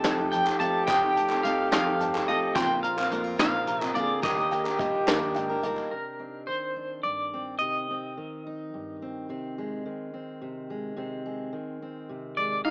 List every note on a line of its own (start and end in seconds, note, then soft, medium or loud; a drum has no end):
0.00 0.85 F2 medium
0.00 0.48 F2 loud
0.00 1.45 C4 medium
0.00 2.57 G4 loud
0.00 0.31 A5 medium
0.00 0.32 A5 medium
0.00 0.33 D#6 medium
0.04 0.19 F3 medium
0.04 0.61 A3 soft
0.04 0.19 C4 medium
0.04 0.18 D#4 medium
0.04 0.17 A4 medium
0.04 snare loud
0.04 clap medium
0.04 closed hi-hat medium
0.18 0.47 C4 soft
0.18 0.45 D#4 medium
0.18 0.44 A4 medium
0.32 2.02 F3 medium
0.32 0.58 G5 medium
0.32 1.15 A5 medium
0.32 clap soft
0.32 closed hi-hat medium
0.45 0.59 C4 soft
0.45 0.60 D#4 soft
0.45 0.60 A4 soft
0.45 clap medium
0.59 0.71 F2 medium
0.59 0.86 F3 medium
0.59 0.86 A3 medium
0.59 0.87 C4 medium
0.59 0.87 D#4 medium
0.59 0.88 A4 medium
0.59 1.43 F5 medium
0.59 0.87 A5 medium
0.59 closed hi-hat medium
0.87 1.32 F2 medium
0.87 1.71 F2 medium
0.87 1.02 F3 medium
0.87 1.02 C4 medium
0.87 1.03 D#4 medium
0.87 1.01 A4 medium
0.87 1.43 G5 loud
0.87 1.71 D#6 medium
0.87 kick medium
0.87 clap medium
0.87 closed hi-hat medium
1.03 1.32 C4 soft
1.03 1.30 D#4 soft
1.03 1.29 A4 soft
1.16 2.53 A3 medium
1.16 1.98 A5 medium
1.16 closed hi-hat medium
1.30 1.43 C4 soft
1.30 1.44 D#4 soft
1.30 1.44 A4 soft
1.30 clap medium
1.43 1.66 C2 medium
1.43 1.70 F3 medium
1.43 1.71 C4 medium
1.43 1.72 D#4 medium
1.43 1.72 A4 medium
1.43 1.71 F5 medium
1.43 2.26 F5 medium
1.43 clap soft
1.43 closed hi-hat medium
1.71 2.16 F2 loud
1.71 1.98 F2 medium
1.71 1.86 F3 medium
1.71 1.86 C4 medium
1.71 1.86 D#4 medium
1.71 1.85 A4 medium
1.71 2.24 F5 loud
1.71 2.56 D#6 medium
1.71 snare medium
1.71 clap medium
1.71 closed hi-hat medium
1.86 2.15 C4 soft
1.86 2.14 D#4 soft
1.86 2.13 A4 medium
1.99 2.27 G2 medium
1.99 2.56 A5 medium
1.99 clap soft
1.99 closed hi-hat medium
2.14 2.27 C4 soft
2.14 2.28 D#4 soft
2.14 2.28 A4 medium
2.14 clap medium
2.28 2.39 F2 medium
2.28 2.56 A2 medium
2.28 2.55 F3 medium
2.28 2.54 C4 medium
2.28 2.55 D#4 medium
2.28 2.57 A4 medium
2.28 2.57 D#5 medium
2.28 2.56 F5 medium
2.28 closed hi-hat medium
2.55 3.00 A#1 loud
2.55 3.36 A#2 medium
2.55 4.21 F3 medium
2.55 2.69 A#3 medium
2.55 2.70 C4 medium
2.55 2.84 C4 medium
2.55 3.69 F4 loud
2.55 2.69 F4 medium
2.55 2.67 A#4 medium
2.55 2.82 G5 medium
2.55 3.68 C6 medium
2.55 kick loud
2.55 clap medium
2.55 closed hi-hat medium
2.59 3.11 F4 medium
2.68 2.98 C4 soft
2.68 2.97 F4 soft
2.68 2.96 A#4 soft
2.83 4.21 C4 medium
2.83 3.38 F5 medium
2.83 3.66 A#5 medium
2.83 closed hi-hat medium
2.97 3.10 C4 soft
2.97 3.11 F4 soft
2.97 3.11 A#4 soft
2.97 clap medium
3.10 3.34 F2 medium
3.10 3.37 A#3 medium
3.10 3.37 C4 medium
3.10 3.24 D#4 medium
3.10 3.38 F4 medium
3.10 3.38 A#4 medium
3.10 clap soft
3.10 closed hi-hat medium
3.24 4.23 F4 medium
3.38 3.84 A#1 loud
3.38 3.66 A#2 medium
3.38 3.53 A#3 medium
3.38 3.53 C4 medium
3.38 3.53 F4 medium
3.38 3.51 A#4 medium
3.38 3.84 F5 medium
3.38 snare medium
3.38 clap medium
3.38 closed hi-hat medium
3.52 3.81 C4 soft
3.52 3.80 F4 soft
3.52 3.79 A#4 soft
3.66 3.95 C3 medium
3.66 4.24 A#5 medium
3.66 clap soft
3.66 closed hi-hat medium
3.80 3.94 C4 soft
3.80 3.95 F4 soft
3.80 3.95 A#4 soft
3.80 clap medium
3.84 3.95 D#5 medium
3.93 4.07 A#1 loud
3.93 4.23 D3 medium
3.93 4.22 A#3 medium
3.93 4.23 C4 medium
3.93 4.23 F4 medium
3.93 4.25 G#4 loud
3.93 4.23 A#4 medium
3.93 4.21 D5 medium
3.93 4.23 F5 medium
3.93 closed hi-hat medium
4.22 4.67 D#2 medium
4.22 5.07 D#2 medium
4.22 4.37 D#3 medium
4.22 4.37 G3 medium
4.22 4.37 A#3 medium
4.22 4.37 D4 medium
4.22 5.67 G4 loud
4.22 4.35 A#4 medium
4.22 5.59 D#5 medium
4.22 5.06 D6 medium
4.22 kick medium
4.22 clap medium
4.22 closed hi-hat medium
4.36 4.65 A#3 soft
4.36 4.64 D4 soft
4.36 4.63 A#4 soft
4.36 clap soft
4.52 5.89 A#3 medium
4.52 5.34 G5 medium
4.52 clap soft
4.52 closed hi-hat medium
4.64 4.77 A#3 soft
4.64 4.78 D4 soft
4.64 4.79 A#4 medium
4.64 clap medium
4.77 5.02 A#1 medium
4.77 5.06 G3 medium
4.77 5.06 A#3 medium
4.77 5.07 D4 medium
4.77 5.88 G4 medium
4.77 5.07 A#4 medium
4.77 5.62 D#5 medium
4.77 kick medium
4.77 clap soft
4.77 closed hi-hat medium
5.07 5.51 D#2 medium
5.07 5.34 G2 soft
5.07 5.21 D#3 medium
5.07 5.21 G3 medium
5.07 5.22 A#3 medium
5.07 5.20 D4 medium
5.07 5.19 A#4 medium
5.07 5.91 D6 medium
5.07 snare medium
5.07 clap medium
5.07 closed hi-hat medium
5.20 5.50 A#3 soft
5.20 5.49 D4 soft
5.20 5.48 A#4 medium
5.35 5.63 G#2 medium
5.35 5.92 G5 medium
5.35 clap soft
5.35 closed hi-hat medium
5.49 5.63 A#3 soft
5.49 5.63 D4 soft
5.49 5.64 A#4 medium
5.63 5.75 C#2 medium
5.63 5.91 A#2 medium
5.63 5.91 G3 medium
5.63 5.92 A#3 medium
5.63 5.92 D4 medium
5.63 5.92 D#4 medium
5.63 5.93 A#4 medium
5.63 5.91 D#5 soft
5.63 closed hi-hat medium
5.77 clap soft
5.91 6.48 C3 soft
5.91 6.76 D4 soft
5.91 6.47 A#4 soft
6.19 7.33 C4 soft
6.47 8.16 D#3 soft
6.47 6.99 C5 medium
6.76 7.57 D4 soft
7.03 7.57 G2 soft
7.03 7.58 D5 medium
7.33 7.90 C4 soft
7.59 8.17 C3 soft
7.59 8.46 D#4 soft
7.59 8.96 D#5 medium
7.90 9.02 C4 soft
8.17 9.84 D#3 soft
8.46 11.96 D#4 soft
8.74 9.26 G2 soft
9.02 9.30 C4 soft
9.29 9.85 C3 medium
9.29 10.13 C4 soft
9.58 10.69 G#3 soft
9.85 11.51 D#3 soft
10.14 10.97 C4 soft
10.42 10.96 C3 soft
10.70 11.24 G#3 soft
10.96 11.53 C3 medium
10.96 11.81 C4 soft
11.26 12.36 G#3 soft
11.52 12.71 D#3 soft
11.82 12.63 C4 soft
12.09 12.62 C3 soft
12.37 12.66 G#3 soft
12.37 12.64 D5 medium
12.65 12.71 D#4 loud
12.65 12.71 F5 loud